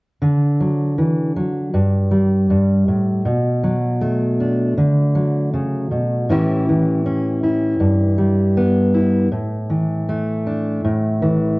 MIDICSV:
0, 0, Header, 1, 2, 480
1, 0, Start_track
1, 0, Key_signature, 2, "major"
1, 0, Tempo, 759494
1, 140, Time_signature, 4, 2, 24, 8
1, 7328, End_track
2, 0, Start_track
2, 0, Title_t, "Steel-string acoustic guitar"
2, 0, Program_c, 0, 25
2, 137, Note_on_c, 0, 50, 43
2, 381, Note_on_c, 0, 54, 34
2, 618, Note_off_c, 0, 54, 0
2, 620, Note_on_c, 0, 52, 34
2, 859, Note_off_c, 0, 52, 0
2, 862, Note_on_c, 0, 54, 38
2, 1073, Note_off_c, 0, 50, 0
2, 1098, Note_on_c, 0, 43, 46
2, 1103, Note_off_c, 0, 54, 0
2, 1335, Note_on_c, 0, 55, 40
2, 1573, Note_off_c, 0, 43, 0
2, 1580, Note_on_c, 0, 43, 42
2, 1819, Note_off_c, 0, 43, 0
2, 1821, Note_on_c, 0, 45, 38
2, 2030, Note_off_c, 0, 55, 0
2, 2056, Note_on_c, 0, 47, 49
2, 2061, Note_off_c, 0, 45, 0
2, 2298, Note_on_c, 0, 54, 39
2, 2537, Note_on_c, 0, 57, 36
2, 2782, Note_on_c, 0, 62, 36
2, 2989, Note_off_c, 0, 54, 0
2, 2991, Note_off_c, 0, 62, 0
2, 3015, Note_off_c, 0, 47, 0
2, 3017, Note_on_c, 0, 50, 50
2, 3255, Note_on_c, 0, 54, 40
2, 3495, Note_off_c, 0, 50, 0
2, 3498, Note_on_c, 0, 49, 41
2, 3733, Note_off_c, 0, 49, 0
2, 3736, Note_on_c, 0, 47, 40
2, 3944, Note_off_c, 0, 54, 0
2, 3973, Note_off_c, 0, 57, 0
2, 3974, Note_off_c, 0, 47, 0
2, 3976, Note_on_c, 0, 45, 46
2, 3982, Note_on_c, 0, 52, 43
2, 3988, Note_on_c, 0, 61, 43
2, 3992, Note_on_c, 0, 64, 43
2, 3993, Note_on_c, 0, 67, 44
2, 4224, Note_off_c, 0, 52, 0
2, 4226, Note_on_c, 0, 52, 42
2, 4453, Note_off_c, 0, 61, 0
2, 4460, Note_on_c, 0, 61, 39
2, 4695, Note_off_c, 0, 64, 0
2, 4698, Note_on_c, 0, 64, 38
2, 4904, Note_off_c, 0, 45, 0
2, 4907, Note_off_c, 0, 61, 0
2, 4912, Note_off_c, 0, 67, 0
2, 4928, Note_on_c, 0, 43, 46
2, 5166, Note_off_c, 0, 52, 0
2, 5168, Note_on_c, 0, 55, 41
2, 5416, Note_on_c, 0, 59, 39
2, 5649, Note_off_c, 0, 64, 0
2, 5652, Note_on_c, 0, 64, 36
2, 5861, Note_off_c, 0, 43, 0
2, 5861, Note_off_c, 0, 55, 0
2, 5863, Note_off_c, 0, 64, 0
2, 5865, Note_off_c, 0, 59, 0
2, 5889, Note_on_c, 0, 45, 48
2, 6129, Note_on_c, 0, 52, 39
2, 6375, Note_on_c, 0, 57, 36
2, 6615, Note_on_c, 0, 62, 34
2, 6825, Note_off_c, 0, 45, 0
2, 6826, Note_off_c, 0, 62, 0
2, 6855, Note_on_c, 0, 45, 48
2, 7085, Note_off_c, 0, 52, 0
2, 7092, Note_on_c, 0, 52, 44
2, 7328, Note_off_c, 0, 45, 0
2, 7328, Note_off_c, 0, 52, 0
2, 7328, Note_off_c, 0, 57, 0
2, 7328, End_track
0, 0, End_of_file